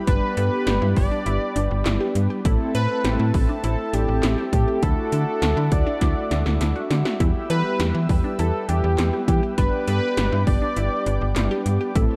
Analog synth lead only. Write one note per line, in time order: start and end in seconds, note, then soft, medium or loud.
0.07 0.35 B4 loud
0.37 0.93 B4 loud
0.97 2.11 D5 loud
2.75 3.30 B4 loud
3.64 3.95 A4 medium
3.94 4.52 G4 loud
4.53 4.84 G4 medium
4.83 5.12 A4 loud
5.12 5.73 A4 loud
5.72 6.91 D5 loud
7.50 8.05 B4 loud
8.39 8.67 A4 medium
8.69 9.24 G4 loud
9.28 9.41 G4 medium
9.58 9.85 B4 loud
9.88 10.43 B4 loud
10.47 11.62 D5 loud